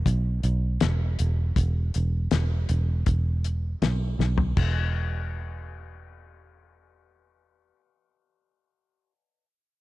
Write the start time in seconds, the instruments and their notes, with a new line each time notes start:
0.06 fingered electric bass B1, kick, closed hi-hat
0.43 fingered electric bass B1, closed hi-hat
0.81 fingered electric bass E1, snare, closed hi-hat
1.19 fingered electric bass E1, closed hi-hat
1.56 fingered electric bass E1, kick, closed hi-hat
1.94 fingered electric bass E1, closed hi-hat
2.31 fingered electric bass E1, snare, closed hi-hat
2.69 fingered electric bass E1, closed hi-hat
3.06 fingered electric bass E1, kick, closed hi-hat
3.44 closed hi-hat
3.82 fingered electric bass B1, snare, closed hi-hat
4.19 fingered electric bass B1, snare
4.38 floor tom
4.57 fingered electric bass E1, kick, crash